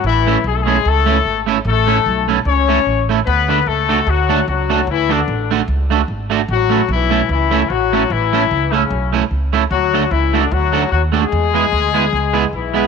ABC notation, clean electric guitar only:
X:1
M:4/4
L:1/16
Q:"Swing" 1/4=149
K:A
V:1 name="Clean electric guitar"
z2 [A,CEA] z3 [A,CEA] z3 [A,CEA] z3 [A,CEA] z | z2 [A,CEA] z3 [A,CEA] z3 [A,CEA] z3 [A,CEA] z | z2 [A,DFA] z3 [A,DFA] z3 [A,DFA] z3 [A,DFA] z | z2 [A,DFA] z3 [A,DFA] z3 [A,DFA] z3 [A,DFA] z |
z2 [A,CEA] z3 [A,CEA] z3 [A,CEA] z3 [A,CEA] z | z2 [A,CEA] z3 [A,CEA] z3 [A,CEA] z3 [A,CEA] z | z2 [A,DFA] z3 [A,DFA] z3 [A,DFA] z3 [A,DFA] z | z2 [G,B,EG] z3 [G,B,EG] z3 [G,B,EG] z3 [G,B,EG] z |]